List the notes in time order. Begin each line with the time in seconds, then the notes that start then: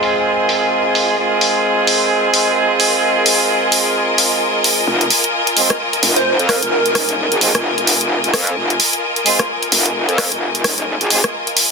Already playing: G#3 C4 F4 G#4 A#4 D#5 G#5
0.03 open hi-hat
0.49 open hi-hat
0.95 open hi-hat
1.18 G#3 C4 F4 G#4
1.41 open hi-hat
1.87 open hi-hat
2.34 open hi-hat
2.80 open hi-hat
3.26 open hi-hat
3.72 open hi-hat
4.18 open hi-hat
4.64 open hi-hat
4.87 F1
5.01 closed hi-hat
5.10 open hi-hat
5.24 closed hi-hat
5.47 closed hi-hat
5.57 G#3 C4 F4 G#4, open hi-hat
5.70 cross-stick, closed hi-hat
5.93 closed hi-hat
6.03 F1, open hi-hat
6.16 C5, closed hi-hat
6.39 F2, closed hi-hat
6.49 A#4, cross-stick, open hi-hat
6.63 F1, closed hi-hat
6.72 A#4
6.86 closed hi-hat
6.95 D#1, cross-stick, open hi-hat
7.09 closed hi-hat
7.32 G#1, closed hi-hat
7.41 G#3 C4 F4 G#4, open hi-hat
7.55 F1, cross-stick, closed hi-hat
7.78 F1, closed hi-hat
7.87 open hi-hat
8.01 closed hi-hat
8.24 F1, closed hi-hat
8.34 F2, cross-stick, open hi-hat
8.47 closed hi-hat
8.57 F1
8.70 closed hi-hat
8.80 open hi-hat
8.93 closed hi-hat
9.16 closed hi-hat
9.26 G#3 C4 F4 G#4, open hi-hat
9.39 cross-stick, closed hi-hat
9.63 closed hi-hat
9.72 F1, open hi-hat
9.86 closed hi-hat
10.09 F2, closed hi-hat
10.18 cross-stick, open hi-hat
10.32 F1, closed hi-hat
10.55 closed hi-hat
10.64 D#1, cross-stick, open hi-hat
10.78 closed hi-hat
11.01 G#1, closed hi-hat
11.10 G#3 C4 F4 G#4, open hi-hat
11.24 cross-stick
11.47 closed hi-hat
11.57 open hi-hat